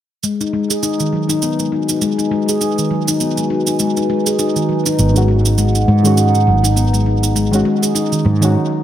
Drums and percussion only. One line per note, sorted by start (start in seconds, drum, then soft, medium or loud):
0.23 shaker soft
0.41 shaker soft
0.70 shaker medium
0.83 shaker soft
1.00 shaker soft
1.30 shaker medium
1.42 shaker soft
1.59 shaker soft
1.89 shaker medium
2.02 shaker medium
2.19 shaker soft
2.49 shaker medium
2.61 shaker medium
2.78 shaker soft
3.08 shaker medium
3.20 shaker medium
3.38 shaker soft
3.67 shaker medium
3.79 shaker medium
3.97 shaker soft
4.26 shaker medium
4.39 shaker medium
4.56 shaker soft
4.86 shaker medium
4.99 shaker medium
5.16 shaker soft
5.45 shaker medium
5.58 shaker medium
5.75 shaker soft
6.05 shaker medium
6.17 shaker medium
6.35 shaker soft
6.65 shaker medium
6.77 shaker medium
6.94 shaker soft
7.23 shaker medium
7.36 shaker medium
7.53 shaker soft
7.83 shaker medium
7.96 shaker medium
8.12 shaker soft
8.42 shaker medium